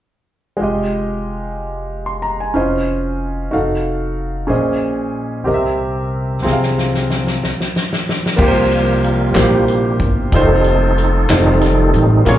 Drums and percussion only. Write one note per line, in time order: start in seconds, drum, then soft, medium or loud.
6.46 snare soft
6.63 snare soft
6.78 snare soft
6.94 snare soft
7.10 snare medium
7.27 snare soft
7.44 snare soft
7.61 snare soft
7.76 snare medium
7.93 snare medium
8.09 snare medium
8.26 snare medium
8.39 kick loud
8.39 crash loud
8.71 closed hi-hat soft
9.04 closed hi-hat soft
9.35 snare loud
9.35 clap medium
9.35 closed hi-hat medium
9.68 closed hi-hat medium
10.00 kick medium
10.00 closed hi-hat soft
10.32 kick loud
10.32 closed hi-hat medium
10.64 closed hi-hat soft
10.98 closed hi-hat medium
11.29 snare loud
11.29 clap medium
11.29 closed hi-hat medium
11.61 snare soft
11.61 closed hi-hat soft
11.94 closed hi-hat soft
12.26 kick medium
12.26 closed hi-hat medium